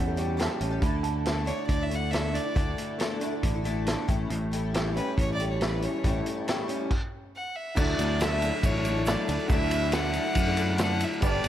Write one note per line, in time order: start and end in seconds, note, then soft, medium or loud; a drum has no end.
0.00 0.47 E2 medium
0.00 0.17 A2 medium
0.00 0.38 E3 medium
0.00 0.17 G3 medium
0.00 0.60 C#4 medium
0.00 0.38 F#5 medium
0.07 0.15 G3 soft
0.07 0.16 C#4 soft
0.07 0.17 G4 soft
0.07 0.18 A4 soft
0.16 0.37 G3 medium
0.16 0.37 C#4 medium
0.16 0.38 G4 medium
0.16 0.38 A4 medium
0.16 closed hi-hat medium
0.37 0.71 A2 medium
0.37 0.71 E3 medium
0.37 0.72 G3 medium
0.37 0.70 C#4 medium
0.37 0.70 G4 medium
0.37 0.69 A4 medium
0.37 0.82 A5 medium
0.37 snare loud
0.37 closed hi-hat medium
0.61 0.78 A1 medium
0.61 0.83 C#4 medium
0.61 closed hi-hat medium
0.71 0.82 G3 soft
0.71 0.82 C#4 soft
0.71 0.82 G4 medium
0.71 0.82 A4 medium
0.82 1.50 D2 loud
0.82 1.04 D3 medium
0.82 1.02 A3 medium
0.82 1.03 D4 medium
0.82 1.04 E4 medium
0.82 1.05 A4 medium
0.82 1.04 B5 medium
0.82 kick loud
0.82 closed hi-hat medium
1.03 1.25 A3 medium
1.03 1.26 D4 medium
1.03 1.25 E4 medium
1.03 1.26 A4 medium
1.03 1.35 A5 medium
1.03 closed hi-hat medium
1.25 1.48 D3 medium
1.25 1.45 A3 medium
1.25 1.46 D4 medium
1.25 1.46 E4 medium
1.25 1.48 A4 medium
1.25 snare loud
1.25 closed hi-hat medium
1.46 1.58 A3 medium
1.46 1.57 D4 medium
1.46 1.56 E4 medium
1.46 1.55 A4 medium
1.46 1.66 C#5 medium
1.46 closed hi-hat medium
1.57 1.80 D4 soft
1.57 1.79 E4 soft
1.57 1.78 A4 medium
1.67 2.37 D2 medium
1.67 2.10 D3 medium
1.67 1.84 D5 medium
1.67 kick medium
1.67 closed hi-hat medium
1.79 1.89 D4 soft
1.79 1.89 E4 soft
1.79 1.90 A4 soft
1.79 1.97 E5 medium
1.89 2.10 A3 medium
1.89 2.11 D4 medium
1.89 2.11 E4 medium
1.89 2.12 A4 medium
1.89 closed hi-hat medium
1.95 2.12 F#5 loud
2.11 2.45 D3 medium
2.11 2.45 A3 medium
2.11 2.44 D4 medium
2.11 2.43 E4 medium
2.11 2.42 A4 medium
2.11 2.36 E5 medium
2.11 snare loud
2.11 closed hi-hat medium
2.33 3.20 D4 medium
2.33 2.78 D5 medium
2.33 closed hi-hat medium
2.43 2.55 D4 soft
2.43 2.55 E4 medium
2.43 2.55 A4 medium
2.55 2.73 D2 loud
2.55 2.78 D3 medium
2.55 2.76 A3 medium
2.55 2.77 D4 medium
2.55 2.77 E4 medium
2.55 2.78 A4 medium
2.55 kick loud
2.55 closed hi-hat medium
2.77 2.99 A3 medium
2.77 2.99 D4 medium
2.77 2.99 E4 medium
2.77 2.99 A4 medium
2.77 closed hi-hat medium
2.99 3.21 D3 medium
2.99 3.19 A3 medium
2.99 3.20 D4 medium
2.99 3.21 E4 loud
2.99 3.22 A4 loud
2.99 snare loud
2.99 closed hi-hat medium
3.20 3.32 A3 medium
3.20 3.33 D4 medium
3.20 3.32 E4 medium
3.20 3.31 A4 medium
3.20 closed hi-hat medium
3.32 3.55 D4 soft
3.32 3.54 E4 soft
3.32 3.53 A4 medium
3.43 3.95 A1 loud
3.43 3.85 D3 medium
3.43 kick medium
3.43 closed hi-hat medium
3.54 3.63 D4 soft
3.54 3.65 E4 medium
3.54 3.65 A4 medium
3.64 3.86 A3 medium
3.64 3.86 D4 medium
3.64 3.87 E4 medium
3.64 3.87 A4 medium
3.64 closed hi-hat medium
3.87 4.07 D3 medium
3.87 4.07 A3 medium
3.87 4.08 D4 medium
3.87 4.08 E4 medium
3.87 4.07 A4 medium
3.87 snare medium
3.87 closed hi-hat medium
4.08 4.26 A1 medium
4.08 4.52 A2 medium
4.08 4.74 E3 medium
4.08 4.50 G3 medium
4.08 4.52 C#4 medium
4.08 4.53 E4 medium
4.08 4.54 A4 medium
4.08 kick loud
4.08 closed hi-hat medium
4.30 4.98 A1 loud
4.30 5.39 A2 medium
4.30 closed hi-hat medium
4.51 4.73 G3 medium
4.51 4.74 C#4 medium
4.51 4.74 E4 medium
4.51 4.74 A4 medium
4.51 closed hi-hat medium
4.74 4.96 A2 medium
4.74 4.96 E3 medium
4.74 4.95 G3 medium
4.74 4.96 C#4 medium
4.74 4.96 E4 medium
4.74 4.96 A4 medium
4.74 snare loud
4.74 closed hi-hat medium
4.95 5.07 G3 medium
4.95 5.06 C#4 medium
4.95 5.06 E4 medium
4.95 5.05 A4 medium
4.95 5.15 B4 medium
4.95 closed hi-hat medium
5.06 5.29 G3 soft
5.06 5.29 C#4 soft
5.06 5.28 E4 soft
5.06 5.27 A4 soft
5.17 5.86 A1 medium
5.17 5.60 E3 medium
5.17 5.32 C#5 loud
5.17 kick medium
5.17 closed hi-hat medium
5.28 5.37 G3 soft
5.28 5.38 C#4 soft
5.28 5.39 E4 soft
5.28 5.39 A4 medium
5.34 5.47 D5 loud
5.38 5.60 G3 medium
5.38 5.61 C#4 medium
5.38 5.61 E4 medium
5.38 5.62 A4 medium
5.38 closed hi-hat medium
5.50 5.65 C#5 medium
5.61 5.94 A2 medium
5.61 5.94 E3 medium
5.61 5.94 G3 medium
5.61 5.94 C#4 medium
5.61 5.93 E4 medium
5.61 5.92 A4 medium
5.61 5.86 B4 medium
5.61 snare loud
5.61 closed hi-hat medium
5.82 6.67 C#4 medium
5.82 6.27 C#5 medium
5.82 closed hi-hat medium
5.93 6.04 G3 soft
5.93 6.04 C#4 medium
5.93 6.05 E4 soft
5.93 6.04 A4 medium
6.04 6.21 A1 loud
6.04 6.26 A2 medium
6.04 6.26 E3 medium
6.04 6.25 G3 medium
6.04 6.26 C#4 medium
6.04 6.26 E4 medium
6.04 6.27 A4 medium
6.04 kick medium
6.04 closed hi-hat medium
6.26 6.47 G3 medium
6.26 6.47 C#4 soft
6.26 6.48 E4 medium
6.26 6.48 A4 medium
6.26 closed hi-hat medium
6.48 6.69 A2 medium
6.48 6.69 E3 medium
6.48 6.67 G3 medium
6.48 6.68 C#4 medium
6.48 6.69 E4 medium
6.48 6.70 A4 medium
6.48 snare loud
6.48 closed hi-hat medium
6.68 6.79 G3 medium
6.68 6.79 C#4 medium
6.68 6.78 E4 medium
6.68 6.78 A4 medium
6.68 closed hi-hat medium
6.79 6.91 G3 soft
6.79 6.91 C#4 soft
6.79 6.90 E4 medium
6.79 6.90 A4 medium
6.91 kick medium
6.91 crash medium
7.36 7.58 F#5 medium
7.56 7.79 E5 medium
7.75 7.94 D2 loud
7.75 7.98 D3 medium
7.75 7.98 F#3 medium
7.75 7.97 A3 medium
7.75 7.98 D4 medium
7.75 11.19 D4 medium
7.75 11.18 E4 medium
7.75 7.99 E4 medium
7.75 11.18 F#4 medium
7.75 11.18 A4 medium
7.75 7.99 A4 medium
7.75 8.23 D5 medium
7.75 kick loud
7.75 crash loud
7.75 shaker medium
7.88 shaker soft
7.98 8.50 D2 medium
7.98 8.20 A3 medium
7.98 8.21 D4 medium
7.98 8.21 E4 medium
7.98 8.21 A4 medium
7.98 ride medium
7.98 shaker medium
8.20 8.42 D3 medium
8.20 8.43 F#3 medium
8.20 8.42 A3 medium
8.20 8.43 D4 medium
8.20 8.43 E4 medium
8.20 8.43 A4 medium
8.20 8.67 E5 loud
8.20 snare loud
8.20 ride loud
8.20 shaker medium
8.42 8.53 A3 medium
8.42 8.54 D4 medium
8.42 8.53 E4 medium
8.42 8.53 A4 medium
8.42 ride medium
8.42 shaker medium
8.54 8.76 A3 soft
8.54 8.76 D4 soft
8.54 8.75 E4 medium
8.54 8.74 A4 medium
8.63 9.14 A1 medium
8.63 9.09 C#5 loud
8.63 kick medium
8.63 ride loud
8.63 shaker medium
8.75 8.85 A3 soft
8.75 8.86 D4 soft
8.75 8.86 E4 soft
8.75 8.86 A4 medium
8.85 8.96 A3 medium
8.85 8.97 D4 medium
8.85 8.97 E4 medium
8.85 8.96 A4 medium
8.85 ride medium
8.85 shaker medium
8.97 9.07 A3 soft
8.97 9.07 D4 soft
8.97 9.08 E4 soft
8.97 9.08 A4 medium
9.06 9.29 D3 medium
9.06 9.29 F#3 medium
9.06 9.27 A3 medium
9.06 9.27 D4 medium
9.06 9.28 E4 medium
9.06 9.49 D5 medium
9.06 snare loud
9.06 ride loud
9.06 shaker loud
9.10 9.30 A4 medium
9.28 9.37 D2 medium
9.28 9.50 A3 medium
9.28 9.50 D4 medium
9.28 9.51 E4 medium
9.28 9.51 A4 medium
9.28 ride medium
9.28 shaker medium
9.39 shaker soft
9.49 10.18 D2 loud
9.49 9.72 D3 medium
9.49 9.72 F#3 medium
9.49 9.72 A3 medium
9.49 9.73 D4 medium
9.49 9.73 E4 medium
9.49 9.73 A4 medium
9.49 9.96 E5 loud
9.49 kick loud
9.49 ride medium
9.49 shaker medium
9.71 9.92 A3 medium
9.71 9.92 D4 medium
9.71 9.92 E4 medium
9.71 ride medium
9.71 shaker medium
9.76 9.93 A4 medium
9.92 10.15 D3 medium
9.92 10.14 F#3 medium
9.92 10.12 A3 medium
9.92 10.13 D4 medium
9.92 10.14 E4 medium
9.92 10.15 A4 medium
9.92 10.80 F#5 loud
9.92 snare loud
9.92 ride loud
9.92 shaker medium
10.13 10.25 A3 medium
10.13 10.25 D4 medium
10.13 10.24 E4 medium
10.13 10.23 A4 medium
10.13 ride medium
10.13 shaker medium
10.24 10.46 A3 soft
10.24 10.45 D4 soft
10.24 10.45 E4 medium
10.24 10.44 A4 medium
10.35 11.04 F#2 loud
10.35 kick medium
10.35 ride loud
10.35 shaker medium
10.45 10.54 A3 medium
10.45 10.56 D4 medium
10.45 10.57 E4 medium
10.45 10.57 A4 medium
10.56 10.68 A3 medium
10.56 10.68 D4 medium
10.56 10.67 E4 medium
10.56 10.67 A4 loud
10.56 ride medium
10.56 shaker medium
10.68 10.77 A3 medium
10.68 10.77 D4 soft
10.68 10.77 E4 medium
10.68 10.78 A4 soft
10.77 11.00 D3 medium
10.77 11.00 F#3 medium
10.77 11.00 A3 medium
10.77 11.01 D4 medium
10.77 11.01 E4 medium
10.77 11.01 A4 medium
10.77 snare loud
10.77 ride loud
10.77 shaker loud
10.82 11.05 F#5 loud
11.00 11.22 A3 medium
11.00 11.21 D4 soft
11.00 11.22 E4 medium
11.00 11.22 A4 medium
11.00 11.23 E5 medium
11.00 ride medium
11.00 shaker medium
11.12 shaker soft
11.21 11.39 G1 loud
11.21 11.44 G3 medium
11.21 11.42 B3 medium
11.21 11.42 D4 medium
11.21 11.48 G4 medium
11.21 11.43 G4 medium
11.21 11.48 A4 medium
11.21 11.44 A4 medium
11.21 11.48 B4 medium
11.21 11.48 D5 loud
11.21 11.48 D5 medium
11.21 kick loud
11.21 ride loud
11.21 shaker loud
11.43 11.48 G1 medium
11.43 11.48 B3 medium
11.43 11.48 D4 medium
11.43 11.48 G4 medium
11.43 ride medium
11.43 shaker medium